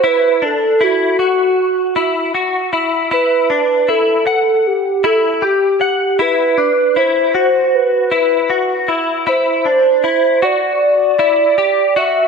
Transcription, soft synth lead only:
\new Staff \with { instrumentName = "Soft synth lead" } { \time 4/4 \key e \minor \tempo 4 = 78 b'8 a'8 fis'2 r4 | b'4 a'4 g'8 a'8 g'4 | b'4 c''4 b'4. r8 | c''4. d''2 e''8 | }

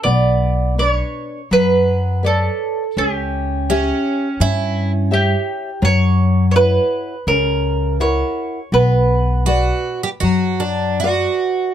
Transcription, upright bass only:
\new Staff \with { instrumentName = "Upright bass" } { \clef bass \time 4/4 \key b \minor \tempo 4 = 82 b,,2 fis,2 | cis,2 g,2 | fis,2 cis,2 | b,,2 fis,2 | }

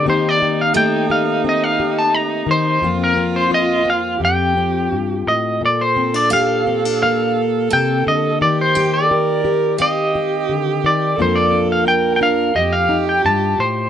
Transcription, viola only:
\new Staff \with { instrumentName = "Viola" } { \time 4/4 \key bes \major \tempo 4 = 87 ees'1 | f'2 g'4. r8 | a'1 | g'4 bes'4 g'2 |
a'4 bes'4 g'2 | }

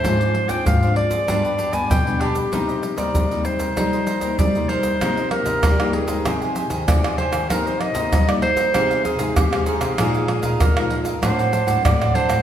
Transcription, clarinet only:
\new Staff \with { instrumentName = "Clarinet" } { \time 4/4 \key c \minor \tempo 4 = 96 c''8. g''16 f''8 d''4~ d''16 aes''16 g''8 g'8~ | g'8. d''8. c''4. d''8 c''8~ | c''8 bes'4 aes'4 r8 d''8 c''8 | bes'16 c''16 ees''8. d''16 c''4 aes'8 g'8 aes'8~ |
aes'4 bes'8 r8 c''4 d''8 c''8 | }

